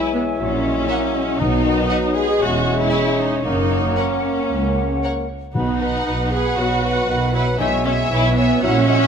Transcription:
Already playing: timpani B2, bassoon E3, french horn section G#3 E4, viola section E4, clarinet C#5, cor anglais E5, flute section G#5
0.14 viola section B3
0.39 double bass section A#1, cello section A#2, bassoon F#3, french horn section F#3, viola section C#4, flute section F#5
0.65 bassoon G#3
0.88 bassoon A#3, violin section C#5 E5 F#5
1.15 bassoon G#3
1.40 double bass section B1, timpani B2, cello section B2, bassoon F#3, french horn section F#3 D#4, viola section D#4, clarinet B4, cor anglais D#5
1.65 bassoon D#3
1.90 bassoon F#3, violin section B4 D#5 F#5
2.16 bassoon G#3, viola section G#4
2.41 double bass section E1, cello section E2, french horn section G#3 C#4, viola section F#4, clarinet G#4, cor anglais C#5, flute section E5
2.81 viola section E4
2.91 violin section G#4 C#5 G#5
3.19 viola section D#4
3.45 double bass section F#1, cello section F#2, bassoon A#3, french horn section A#3 C#4, viola section D#4, clarinet A#4, flute section F#5
3.96 french horn section A#3 C#4, viola section C#4, violin section A#4 C#5 F#5
4.49 double bass section C#2, cello section C#2
5.04 violin section A#4 C#5 F#5
5.55 double bass section B1, timpani B2, cello section B2, french horn section B3 F#4, viola section D#4, clarinet B4, cor anglais F#5, flute section B5
5.81 violin section B4 F#5, clarinet B4, cor anglais F#5, flute section B5
6.06 double bass section B1, cello section B2, clarinet B4, cor anglais F#5, flute section B5
6.32 viola section G#4, clarinet B4, violin section B4 F#5, cor anglais F#5, flute section B5
6.58 double bass section B1, cello section B2, bassoon F#3, french horn section B3 F#4, viola section F#4, clarinet B4, cor anglais F#5, flute section B5
6.84 clarinet B4, violin section B4 F#5, cor anglais F#5, flute section B5
7.09 double bass section B1, cello section B2, bassoon D#3, clarinet B4, cor anglais F#5, flute section B5
7.34 bassoon F#3, viola section E4, violin section B4 F#5, clarinet B4, cor anglais F#5, flute section B5
7.59 double bass section B1, timpani B2, cello section B2, bassoon G#3, french horn section G#3 E4, viola section D#4, clarinet C#5, violin section C#5 E5, cor anglais E5, flute section G#5
7.85 viola section C#4, violin section C#5 E5, clarinet C#5, cor anglais E5
8.10 double bass section B1, cello section B2, bassoon E3, viola section E4, clarinet C#5, cor anglais E5, flute section G#5
8.36 viola section B3, clarinet C#5, violin section C#5 E5, cor anglais E5, flute section G#5
8.62 double bass section A#1, cello section A#2, bassoon F#3, french horn section F#3 E4, viola section C#4, clarinet C#5, violin section C#5 E5 F#5, cor anglais E5, flute section F#5
8.87 bassoon G#3, violin section C#5 E5 F#5, clarinet C#5, cor anglais E5, flute section F#5

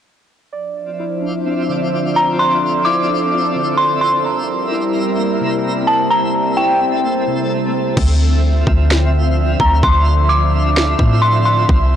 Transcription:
0.53 ambient pad F3 D4 C5 E5, synth texture C4 F4 D5 E5, synth keys D5
1.00 synth keys E4
1.22 synth keys D4
1.46 synth keys C4
1.69 synth keys D3
1.92 synth keys D5
2.16 synth keys F4, synth bell A#5
2.39 ambient pad A4, synth keys D5, synth bell C6
2.85 synth keys E4, synth bell D6
3.08 synth keys D4
3.32 synth keys C4
3.56 synth keys D3
3.77 synth keys D5, synth bell C6
4.01 synth keys F4, synth bell C6
4.25 ambient pad G3 C4 E4 A#4, synth texture A#4, synth keys A#5
4.71 synth keys E4
4.95 synth keys C4
5.18 synth keys A#3
5.41 synth keys C3
5.65 synth keys A#5
5.87 synth keys C5, synth bell A5
6.11 synth texture A3, ambient pad C5, synth bell A#5, synth keys A#5
6.57 synth keys E4, synth bell G5
6.81 synth keys C4
7.04 synth keys A#3
7.27 synth keys C3
7.50 synth keys A#5
7.73 synth keys C5
7.97 808-style bass D2, ambient pad D3 F3 C4 E5, synth texture C4 F4 E5, kick, crash
8.67 808-style bass D2, kick
8.91 snare
9.60 808-style bass D2, synth bell A#5, kick
9.83 808-style bass D2, ambient pad D4, synth bell C6, kick
10.29 synth bell D6
10.77 snare
10.99 808-style bass A2, kick
11.22 synth bell C6
11.45 synth bell C6
11.69 808-style bass C2, ambient pad C3 G3 A#3, synth texture A#4, kick

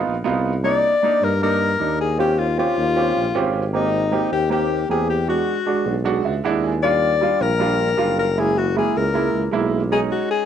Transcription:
Already playing: grand piano B3 D#4 F4
0.06 tuba A#1
0.24 tuba C2, grand piano B3 D#4 F4
0.63 grand piano A#3 D4 D#4, alto saxophone D5
1.03 grand piano A#3 D4 D#4
1.22 tuba G2, alto saxophone A#4
1.42 grand piano A#3 D4 D#4, alto saxophone A#4
1.79 tuba D#2, grand piano A#3 D4 D#4
2.01 alto saxophone G#4
2.18 grand piano C4 C#4 F4 G4, alto saxophone G4
2.39 alto saxophone F4
2.58 grand piano C4 C#4 F4 G4, alto saxophone F4
2.77 tuba D#2
2.96 grand piano C4 C#4 F4 G4
3.16 tuba A#1
3.35 tuba G#1, grand piano C4 C#4 F4 G4
3.73 grand piano A#3 C4 G4, alto saxophone D#4
4.12 grand piano A#3 C4 G4
4.32 tuba D#2, alto saxophone G4
4.50 grand piano A#3 C4 G4, alto saxophone G4
4.89 tuba E2, grand piano A#3 C4 G4, alto saxophone G#4
5.10 alto saxophone G4
5.27 grand piano G#3 D4 F#4, alto saxophone F#4
5.66 grand piano G#3 D4 F#4
5.86 tuba B1
6.04 grand piano G#3 D4 F#4
6.24 tuba C#2, grand piano E5
6.44 tuba D#2, grand piano G#3 D4 E4 F#5
6.64 grand piano G#5
6.83 grand piano G3 D4 F4, alto saxophone D5
7.21 grand piano G3 D4 F4
7.40 tuba A#1, alto saxophone A#4
7.59 grand piano G3 D4 F4
7.97 tuba F#1, grand piano G3 D4 F4
8.19 alto saxophone A#4
8.36 grand piano G#3 A#3 E4, alto saxophone G#4
8.59 alto saxophone F#4
8.75 grand piano G#3 A#3 E4, alto saxophone G#4
8.95 tuba C#2, alto saxophone A#4
9.13 grand piano G#3 A#3 E4
9.34 tuba C#2
9.51 tuba B1, grand piano G#3 A#3 E4
9.90 grand piano G#3 C#4 D#4, alto saxophone G#4
10.12 alto saxophone F#4
10.31 alto saxophone G#4

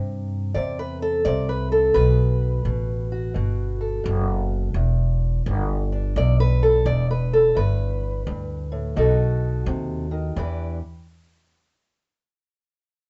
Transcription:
Already playing: upright bass G2, steel-string acoustic guitar C3 E4
0.54 upright bass E2, steel-string acoustic guitar C3 D5
0.79 steel-string acoustic guitar B4
1.02 steel-string acoustic guitar A4
1.25 upright bass C2, steel-string acoustic guitar C3 D5
1.49 steel-string acoustic guitar B4
1.72 steel-string acoustic guitar A4
1.94 upright bass B1, steel-string acoustic guitar B2 B4
2.65 upright bass A1, steel-string acoustic guitar B2
3.12 steel-string acoustic guitar F#4
3.34 upright bass G1, steel-string acoustic guitar B2
3.81 steel-string acoustic guitar A4
4.04 upright bass F#1, steel-string acoustic guitar B2
4.74 upright bass E1, steel-string acoustic guitar E2
5.46 upright bass G1, steel-string acoustic guitar E2
5.92 steel-string acoustic guitar D4
6.16 upright bass B1, steel-string acoustic guitar E2 D5
6.40 steel-string acoustic guitar B4
6.63 steel-string acoustic guitar A4
6.86 upright bass E1, steel-string acoustic guitar E2 D5
7.11 steel-string acoustic guitar B4
7.33 steel-string acoustic guitar A4
7.55 upright bass G1, steel-string acoustic guitar E2 B4
8.26 upright bass D2, steel-string acoustic guitar G2
8.72 steel-string acoustic guitar A2
8.96 upright bass B1, steel-string acoustic guitar B2 D#4 F#4 A4
9.66 upright bass D#2, steel-string acoustic guitar C3
10.11 steel-string acoustic guitar D#3
10.36 steel-string acoustic guitar E2 E3 D4 G4 B4, upright bass E2

